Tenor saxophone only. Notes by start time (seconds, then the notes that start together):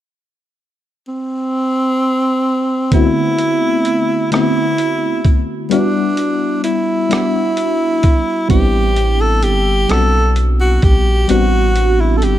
1.08 C4
2.93 E4
4.33 E4
5.71 D4
6.64 E4
8.50 G4
9.21 A4
9.44 G4
9.90 A4
10.60 F#4
10.84 G4
11.30 F#4
12.00 E4
12.17 A4
12.24 G4